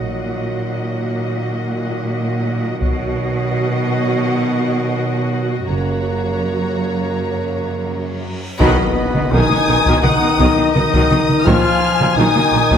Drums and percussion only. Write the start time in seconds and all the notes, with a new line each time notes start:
2.82 taiko
8.61 taiko, tam-tam
9.15 taiko mid
9.50 taiko mid
9.86 taiko
10.04 taiko mid
10.40 taiko
10.76 taiko mid
10.94 taiko
11.11 taiko mid
11.29 taiko mid
11.47 taiko
12.01 taiko mid
12.36 taiko mid
12.71 taiko